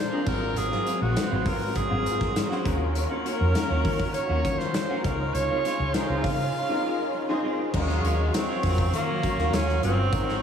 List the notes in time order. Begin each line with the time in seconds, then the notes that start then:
Already playing: G#3 A#3 C4 D4 F4 G4 G#4 A#4 C5
0.11 A#3 C4 D4 F4 G#4 A#4
0.26 G#1 F#3 C4 F4 F#4 A4 A#4, kick, crash
0.34 A#4
0.41 muted clean electric guitar stroke
0.56 G#1 G#4, muted clean electric guitar stroke, closed hi-hat
0.70 F#3 C4 F4, snare
0.85 F#3 C4 F4, closed hi-hat
1.01 A#1 F#4, muted clean electric guitar stroke
1.15 C4 F4 F#4 B4, muted clean electric guitar stroke, snare, closed hi-hat
1.23 C5
1.31 G#1 F#3 C4 F4
1.45 G#2 F#3 C4 F4 A#4, kick, open hi-hat
1.60 muted clean electric guitar stroke
1.75 G#4, muted clean electric guitar stroke, kick, closed hi-hat
1.89 G#1 F#3 C4 F4 F#4 G#4
1.97 A#4
2.05 G#2, muted clean electric guitar stroke, closed hi-hat
2.20 muted clean electric guitar stroke, kick, snare
2.35 muted clean electric guitar stroke, snare, closed hi-hat
2.49 F#3 C4 F4 F#4 C5, snare
2.64 D#2 D#3 A#3 C#4 F4 F#4 G#4 A#4, kick, closed hi-hat
2.80 muted clean electric guitar stroke
2.94 A#3 F#4 A#4 C#5, muted clean electric guitar stroke, closed hi-hat
3.09 A#3 C#4 F#4
3.25 A#3 C#4 F#4, closed hi-hat
3.40 F2, muted clean electric guitar stroke
3.54 C#4 F4 F#4 A#4, muted clean electric guitar stroke, snare, closed hi-hat
3.70 D#2 A#3 C#4 F#4
3.85 D#3 A#3 C#4 F#4, kick, open hi-hat
4.00 muted clean electric guitar stroke, kick
4.14 C#5, muted clean electric guitar stroke, closed hi-hat
4.29 D#2 A#3 C#4 F4 F#4 A#4
4.45 D#3, muted clean electric guitar stroke, kick, closed hi-hat
4.59 C5, muted clean electric guitar stroke, snare
4.74 snare, closed hi-hat
4.88 A#3 C#4 F4 F#4 G#4 A#4
5.03 C#2 C#3 G#3 C4 C#4 D#4 F4 G#4 A#4 C#5 F5 C6, kick, closed hi-hat
5.20 muted clean electric guitar stroke
5.34 C#2 C#5, muted clean electric guitar stroke, closed hi-hat
5.50 G#3 C4 F4
5.65 G#3 C4 F4, closed hi-hat
5.79 C#2, muted clean electric guitar stroke
5.94 D#4 F4 G#4 A#4 C5, muted clean electric guitar stroke, snare, closed hi-hat
6.09 C#2 G#3 C4 F4
6.23 C#3 G#3 C4 F4 F5, kick, snare, open hi-hat
6.40 muted clean electric guitar stroke
6.54 muted clean electric guitar stroke
6.69 G#3 C4 D#4 F4 G#4 A#4
6.84 muted clean electric guitar stroke
6.99 muted clean electric guitar stroke
7.14 muted clean electric guitar stroke
7.28 G#3 C4 D#4 F4 G#4 C5
7.44 G#3 C4 G#4
7.60 muted clean electric guitar stroke
7.73 D#2 F#3 G#3 C#4 F4 F#4 A#4 F5 C#6, muted clean electric guitar stroke, kick, crash
7.89 F#3 C#4 F4, snare
8.03 D#2 F#3 C#4 F4, closed hi-hat
8.19 muted clean electric guitar stroke
8.34 C4, muted clean electric guitar stroke, snare, closed hi-hat
8.49 F#3 C#4 F4
8.63 F2 F#3 C#4 F4 F#4 A#4, kick, snare, open hi-hat
8.78 muted clean electric guitar stroke, kick
8.92 D#3 A#3, muted clean electric guitar stroke, closed hi-hat
9.09 F#3 C#4 F4
9.23 F#3 C#4 F4, kick, closed hi-hat
9.38 D#2 C#4 F4 F#4 A#4, muted clean electric guitar stroke, snare
9.52 D#2 C#4, muted clean electric guitar stroke, snare, closed hi-hat
9.67 F#3 C#4 F#4, snare
9.82 G1 F#3 C4 C#4 F4 F#4 A#4, closed hi-hat
9.98 muted clean electric guitar stroke
10.12 G#1 C#4 D#4 F#4 G#4 A#4 F#5 C#6, muted clean electric guitar stroke, kick, closed hi-hat
10.27 G#3 C#4 F#4, snare